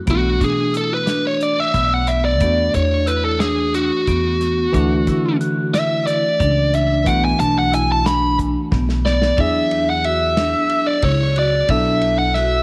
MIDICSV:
0, 0, Header, 1, 6, 480
1, 0, Start_track
1, 0, Tempo, 663717
1, 59, Time_signature, 7, 3, 24, 8
1, 9133, End_track
2, 0, Start_track
2, 0, Title_t, "Lead electric guitar"
2, 0, Program_c, 0, 29
2, 77, Note_on_c, 0, 66, 77
2, 317, Note_off_c, 0, 66, 0
2, 317, Note_on_c, 0, 68, 73
2, 534, Note_off_c, 0, 68, 0
2, 558, Note_on_c, 0, 69, 70
2, 674, Note_off_c, 0, 69, 0
2, 681, Note_on_c, 0, 71, 81
2, 897, Note_off_c, 0, 71, 0
2, 918, Note_on_c, 0, 73, 78
2, 1032, Note_off_c, 0, 73, 0
2, 1032, Note_on_c, 0, 74, 86
2, 1155, Note_off_c, 0, 74, 0
2, 1155, Note_on_c, 0, 76, 89
2, 1399, Note_off_c, 0, 76, 0
2, 1402, Note_on_c, 0, 78, 84
2, 1504, Note_on_c, 0, 76, 93
2, 1518, Note_off_c, 0, 78, 0
2, 1622, Note_off_c, 0, 76, 0
2, 1625, Note_on_c, 0, 74, 84
2, 1963, Note_off_c, 0, 74, 0
2, 1989, Note_on_c, 0, 73, 78
2, 2222, Note_on_c, 0, 71, 80
2, 2237, Note_off_c, 0, 73, 0
2, 2347, Note_off_c, 0, 71, 0
2, 2350, Note_on_c, 0, 69, 81
2, 2457, Note_off_c, 0, 69, 0
2, 2460, Note_on_c, 0, 68, 86
2, 2689, Note_off_c, 0, 68, 0
2, 2710, Note_on_c, 0, 66, 72
2, 3883, Note_off_c, 0, 66, 0
2, 4156, Note_on_c, 0, 76, 84
2, 4384, Note_off_c, 0, 76, 0
2, 4387, Note_on_c, 0, 74, 85
2, 4878, Note_off_c, 0, 74, 0
2, 4881, Note_on_c, 0, 76, 85
2, 5115, Note_on_c, 0, 78, 89
2, 5123, Note_off_c, 0, 76, 0
2, 5236, Note_off_c, 0, 78, 0
2, 5241, Note_on_c, 0, 80, 89
2, 5348, Note_off_c, 0, 80, 0
2, 5352, Note_on_c, 0, 81, 92
2, 5474, Note_off_c, 0, 81, 0
2, 5485, Note_on_c, 0, 78, 83
2, 5599, Note_off_c, 0, 78, 0
2, 5602, Note_on_c, 0, 80, 86
2, 5708, Note_off_c, 0, 80, 0
2, 5727, Note_on_c, 0, 81, 101
2, 5829, Note_on_c, 0, 83, 99
2, 5842, Note_off_c, 0, 81, 0
2, 6052, Note_off_c, 0, 83, 0
2, 6549, Note_on_c, 0, 74, 81
2, 6795, Note_off_c, 0, 74, 0
2, 6800, Note_on_c, 0, 76, 87
2, 7156, Note_off_c, 0, 76, 0
2, 7159, Note_on_c, 0, 78, 80
2, 7268, Note_off_c, 0, 78, 0
2, 7268, Note_on_c, 0, 76, 78
2, 7860, Note_on_c, 0, 74, 84
2, 7883, Note_off_c, 0, 76, 0
2, 7985, Note_off_c, 0, 74, 0
2, 7988, Note_on_c, 0, 73, 90
2, 8232, Note_off_c, 0, 73, 0
2, 8235, Note_on_c, 0, 74, 85
2, 8452, Note_off_c, 0, 74, 0
2, 8463, Note_on_c, 0, 76, 88
2, 8810, Note_off_c, 0, 76, 0
2, 8813, Note_on_c, 0, 78, 90
2, 8926, Note_off_c, 0, 78, 0
2, 8926, Note_on_c, 0, 76, 97
2, 9133, Note_off_c, 0, 76, 0
2, 9133, End_track
3, 0, Start_track
3, 0, Title_t, "Vibraphone"
3, 0, Program_c, 1, 11
3, 52, Note_on_c, 1, 59, 82
3, 226, Note_off_c, 1, 59, 0
3, 291, Note_on_c, 1, 62, 68
3, 465, Note_off_c, 1, 62, 0
3, 532, Note_on_c, 1, 64, 64
3, 706, Note_off_c, 1, 64, 0
3, 767, Note_on_c, 1, 62, 75
3, 1114, Note_off_c, 1, 62, 0
3, 1256, Note_on_c, 1, 59, 70
3, 1430, Note_off_c, 1, 59, 0
3, 1497, Note_on_c, 1, 59, 68
3, 1671, Note_off_c, 1, 59, 0
3, 1746, Note_on_c, 1, 59, 83
3, 1917, Note_off_c, 1, 59, 0
3, 1978, Note_on_c, 1, 62, 71
3, 2152, Note_off_c, 1, 62, 0
3, 2216, Note_on_c, 1, 64, 75
3, 2391, Note_off_c, 1, 64, 0
3, 2463, Note_on_c, 1, 62, 81
3, 2806, Note_off_c, 1, 62, 0
3, 2949, Note_on_c, 1, 59, 78
3, 3120, Note_off_c, 1, 59, 0
3, 3183, Note_on_c, 1, 59, 65
3, 3356, Note_off_c, 1, 59, 0
3, 3423, Note_on_c, 1, 62, 89
3, 3596, Note_off_c, 1, 62, 0
3, 3673, Note_on_c, 1, 64, 78
3, 3842, Note_off_c, 1, 64, 0
3, 3911, Note_on_c, 1, 66, 77
3, 4081, Note_off_c, 1, 66, 0
3, 4149, Note_on_c, 1, 64, 76
3, 4489, Note_off_c, 1, 64, 0
3, 4625, Note_on_c, 1, 62, 85
3, 4797, Note_off_c, 1, 62, 0
3, 4877, Note_on_c, 1, 62, 78
3, 5044, Note_off_c, 1, 62, 0
3, 5109, Note_on_c, 1, 59, 91
3, 5279, Note_off_c, 1, 59, 0
3, 5351, Note_on_c, 1, 62, 72
3, 5520, Note_off_c, 1, 62, 0
3, 5583, Note_on_c, 1, 64, 79
3, 5755, Note_off_c, 1, 64, 0
3, 5821, Note_on_c, 1, 62, 82
3, 6163, Note_off_c, 1, 62, 0
3, 6302, Note_on_c, 1, 59, 79
3, 6474, Note_off_c, 1, 59, 0
3, 6545, Note_on_c, 1, 59, 71
3, 6715, Note_off_c, 1, 59, 0
3, 6779, Note_on_c, 1, 62, 95
3, 7120, Note_off_c, 1, 62, 0
3, 7260, Note_on_c, 1, 66, 72
3, 7431, Note_off_c, 1, 66, 0
3, 7501, Note_on_c, 1, 62, 77
3, 7672, Note_off_c, 1, 62, 0
3, 7741, Note_on_c, 1, 62, 80
3, 7911, Note_off_c, 1, 62, 0
3, 7979, Note_on_c, 1, 64, 75
3, 8150, Note_off_c, 1, 64, 0
3, 8217, Note_on_c, 1, 66, 66
3, 8388, Note_off_c, 1, 66, 0
3, 8456, Note_on_c, 1, 62, 92
3, 8796, Note_off_c, 1, 62, 0
3, 8936, Note_on_c, 1, 66, 77
3, 9107, Note_off_c, 1, 66, 0
3, 9133, End_track
4, 0, Start_track
4, 0, Title_t, "Tine electric piano"
4, 0, Program_c, 2, 4
4, 44, Note_on_c, 2, 52, 54
4, 53, Note_on_c, 2, 57, 56
4, 61, Note_on_c, 2, 62, 52
4, 71, Note_on_c, 2, 66, 65
4, 1712, Note_off_c, 2, 52, 0
4, 1717, Note_off_c, 2, 57, 0
4, 1721, Note_off_c, 2, 62, 0
4, 1725, Note_off_c, 2, 66, 0
4, 1739, Note_on_c, 2, 52, 53
4, 1752, Note_on_c, 2, 57, 58
4, 1759, Note_on_c, 2, 62, 55
4, 1764, Note_on_c, 2, 66, 67
4, 3398, Note_off_c, 2, 52, 0
4, 3405, Note_off_c, 2, 57, 0
4, 3409, Note_off_c, 2, 62, 0
4, 3411, Note_off_c, 2, 66, 0
4, 3415, Note_on_c, 2, 52, 79
4, 3425, Note_on_c, 2, 57, 69
4, 3430, Note_on_c, 2, 62, 65
4, 3443, Note_on_c, 2, 66, 82
4, 5074, Note_off_c, 2, 52, 0
4, 5078, Note_off_c, 2, 57, 0
4, 5081, Note_off_c, 2, 62, 0
4, 5088, Note_off_c, 2, 66, 0
4, 5093, Note_on_c, 2, 52, 66
4, 5102, Note_on_c, 2, 57, 55
4, 5108, Note_on_c, 2, 62, 54
4, 5119, Note_on_c, 2, 66, 71
4, 6749, Note_off_c, 2, 52, 0
4, 6754, Note_off_c, 2, 57, 0
4, 6757, Note_off_c, 2, 62, 0
4, 6762, Note_off_c, 2, 66, 0
4, 6771, Note_on_c, 2, 54, 64
4, 6782, Note_on_c, 2, 59, 58
4, 6789, Note_on_c, 2, 64, 57
4, 6799, Note_on_c, 2, 68, 63
4, 8425, Note_off_c, 2, 54, 0
4, 8430, Note_off_c, 2, 59, 0
4, 8434, Note_off_c, 2, 64, 0
4, 8439, Note_off_c, 2, 68, 0
4, 8447, Note_on_c, 2, 54, 63
4, 8457, Note_on_c, 2, 59, 62
4, 8462, Note_on_c, 2, 64, 62
4, 8471, Note_on_c, 2, 69, 72
4, 9133, Note_off_c, 2, 54, 0
4, 9133, Note_off_c, 2, 59, 0
4, 9133, Note_off_c, 2, 64, 0
4, 9133, Note_off_c, 2, 69, 0
4, 9133, End_track
5, 0, Start_track
5, 0, Title_t, "Upright bass"
5, 0, Program_c, 3, 32
5, 56, Note_on_c, 3, 35, 81
5, 266, Note_off_c, 3, 35, 0
5, 295, Note_on_c, 3, 47, 79
5, 1130, Note_off_c, 3, 47, 0
5, 1257, Note_on_c, 3, 35, 87
5, 1741, Note_off_c, 3, 35, 0
5, 1741, Note_on_c, 3, 40, 90
5, 1952, Note_off_c, 3, 40, 0
5, 1981, Note_on_c, 3, 40, 81
5, 2815, Note_off_c, 3, 40, 0
5, 2946, Note_on_c, 3, 40, 87
5, 3363, Note_off_c, 3, 40, 0
5, 3430, Note_on_c, 3, 38, 92
5, 3638, Note_off_c, 3, 38, 0
5, 3672, Note_on_c, 3, 50, 85
5, 4499, Note_off_c, 3, 50, 0
5, 4629, Note_on_c, 3, 37, 89
5, 5105, Note_off_c, 3, 37, 0
5, 5105, Note_on_c, 3, 35, 96
5, 5314, Note_off_c, 3, 35, 0
5, 5351, Note_on_c, 3, 35, 84
5, 6177, Note_off_c, 3, 35, 0
5, 6308, Note_on_c, 3, 35, 86
5, 6721, Note_off_c, 3, 35, 0
5, 6783, Note_on_c, 3, 40, 90
5, 7610, Note_off_c, 3, 40, 0
5, 7974, Note_on_c, 3, 37, 85
5, 8391, Note_off_c, 3, 37, 0
5, 8453, Note_on_c, 3, 35, 98
5, 9133, Note_off_c, 3, 35, 0
5, 9133, End_track
6, 0, Start_track
6, 0, Title_t, "Drums"
6, 51, Note_on_c, 9, 42, 81
6, 55, Note_on_c, 9, 36, 94
6, 123, Note_off_c, 9, 42, 0
6, 127, Note_off_c, 9, 36, 0
6, 296, Note_on_c, 9, 36, 64
6, 297, Note_on_c, 9, 42, 57
6, 368, Note_off_c, 9, 36, 0
6, 370, Note_off_c, 9, 42, 0
6, 535, Note_on_c, 9, 42, 55
6, 608, Note_off_c, 9, 42, 0
6, 775, Note_on_c, 9, 38, 93
6, 775, Note_on_c, 9, 42, 77
6, 847, Note_off_c, 9, 38, 0
6, 847, Note_off_c, 9, 42, 0
6, 1018, Note_on_c, 9, 42, 58
6, 1091, Note_off_c, 9, 42, 0
6, 1259, Note_on_c, 9, 38, 31
6, 1259, Note_on_c, 9, 42, 69
6, 1260, Note_on_c, 9, 36, 88
6, 1331, Note_off_c, 9, 38, 0
6, 1331, Note_off_c, 9, 42, 0
6, 1333, Note_off_c, 9, 36, 0
6, 1498, Note_on_c, 9, 42, 55
6, 1570, Note_off_c, 9, 42, 0
6, 1739, Note_on_c, 9, 42, 75
6, 1742, Note_on_c, 9, 36, 99
6, 1811, Note_off_c, 9, 42, 0
6, 1814, Note_off_c, 9, 36, 0
6, 1983, Note_on_c, 9, 36, 68
6, 1983, Note_on_c, 9, 42, 59
6, 2055, Note_off_c, 9, 36, 0
6, 2055, Note_off_c, 9, 42, 0
6, 2221, Note_on_c, 9, 42, 57
6, 2293, Note_off_c, 9, 42, 0
6, 2460, Note_on_c, 9, 38, 94
6, 2460, Note_on_c, 9, 42, 65
6, 2532, Note_off_c, 9, 38, 0
6, 2532, Note_off_c, 9, 42, 0
6, 2706, Note_on_c, 9, 42, 54
6, 2779, Note_off_c, 9, 42, 0
6, 2946, Note_on_c, 9, 42, 70
6, 2947, Note_on_c, 9, 36, 91
6, 3018, Note_off_c, 9, 42, 0
6, 3019, Note_off_c, 9, 36, 0
6, 3188, Note_on_c, 9, 38, 31
6, 3188, Note_on_c, 9, 42, 52
6, 3260, Note_off_c, 9, 38, 0
6, 3260, Note_off_c, 9, 42, 0
6, 3429, Note_on_c, 9, 36, 99
6, 3429, Note_on_c, 9, 42, 77
6, 3501, Note_off_c, 9, 36, 0
6, 3502, Note_off_c, 9, 42, 0
6, 3667, Note_on_c, 9, 38, 33
6, 3667, Note_on_c, 9, 42, 60
6, 3669, Note_on_c, 9, 36, 70
6, 3740, Note_off_c, 9, 38, 0
6, 3740, Note_off_c, 9, 42, 0
6, 3741, Note_off_c, 9, 36, 0
6, 3911, Note_on_c, 9, 42, 60
6, 3984, Note_off_c, 9, 42, 0
6, 4152, Note_on_c, 9, 38, 89
6, 4152, Note_on_c, 9, 42, 78
6, 4224, Note_off_c, 9, 38, 0
6, 4224, Note_off_c, 9, 42, 0
6, 4393, Note_on_c, 9, 38, 31
6, 4393, Note_on_c, 9, 42, 61
6, 4465, Note_off_c, 9, 38, 0
6, 4465, Note_off_c, 9, 42, 0
6, 4629, Note_on_c, 9, 42, 72
6, 4630, Note_on_c, 9, 36, 94
6, 4701, Note_off_c, 9, 42, 0
6, 4702, Note_off_c, 9, 36, 0
6, 4872, Note_on_c, 9, 42, 57
6, 4945, Note_off_c, 9, 42, 0
6, 5107, Note_on_c, 9, 42, 81
6, 5109, Note_on_c, 9, 36, 102
6, 5180, Note_off_c, 9, 42, 0
6, 5181, Note_off_c, 9, 36, 0
6, 5349, Note_on_c, 9, 42, 67
6, 5422, Note_off_c, 9, 42, 0
6, 5593, Note_on_c, 9, 42, 68
6, 5665, Note_off_c, 9, 42, 0
6, 5831, Note_on_c, 9, 38, 105
6, 5831, Note_on_c, 9, 42, 79
6, 5903, Note_off_c, 9, 38, 0
6, 5903, Note_off_c, 9, 42, 0
6, 6067, Note_on_c, 9, 36, 71
6, 6069, Note_on_c, 9, 42, 60
6, 6140, Note_off_c, 9, 36, 0
6, 6141, Note_off_c, 9, 42, 0
6, 6306, Note_on_c, 9, 36, 99
6, 6307, Note_on_c, 9, 38, 56
6, 6378, Note_off_c, 9, 36, 0
6, 6379, Note_off_c, 9, 38, 0
6, 6428, Note_on_c, 9, 38, 64
6, 6500, Note_off_c, 9, 38, 0
6, 6548, Note_on_c, 9, 38, 77
6, 6621, Note_off_c, 9, 38, 0
6, 6667, Note_on_c, 9, 38, 92
6, 6739, Note_off_c, 9, 38, 0
6, 6783, Note_on_c, 9, 51, 79
6, 6784, Note_on_c, 9, 36, 110
6, 6855, Note_off_c, 9, 51, 0
6, 6857, Note_off_c, 9, 36, 0
6, 7023, Note_on_c, 9, 51, 61
6, 7095, Note_off_c, 9, 51, 0
6, 7263, Note_on_c, 9, 51, 63
6, 7335, Note_off_c, 9, 51, 0
6, 7500, Note_on_c, 9, 38, 99
6, 7500, Note_on_c, 9, 51, 79
6, 7573, Note_off_c, 9, 38, 0
6, 7573, Note_off_c, 9, 51, 0
6, 7735, Note_on_c, 9, 51, 61
6, 7807, Note_off_c, 9, 51, 0
6, 7972, Note_on_c, 9, 51, 87
6, 7975, Note_on_c, 9, 36, 99
6, 8044, Note_off_c, 9, 51, 0
6, 8048, Note_off_c, 9, 36, 0
6, 8215, Note_on_c, 9, 51, 62
6, 8287, Note_off_c, 9, 51, 0
6, 8451, Note_on_c, 9, 51, 84
6, 8453, Note_on_c, 9, 36, 105
6, 8523, Note_off_c, 9, 51, 0
6, 8526, Note_off_c, 9, 36, 0
6, 8689, Note_on_c, 9, 51, 64
6, 8761, Note_off_c, 9, 51, 0
6, 8934, Note_on_c, 9, 38, 37
6, 8934, Note_on_c, 9, 51, 63
6, 9006, Note_off_c, 9, 38, 0
6, 9006, Note_off_c, 9, 51, 0
6, 9133, End_track
0, 0, End_of_file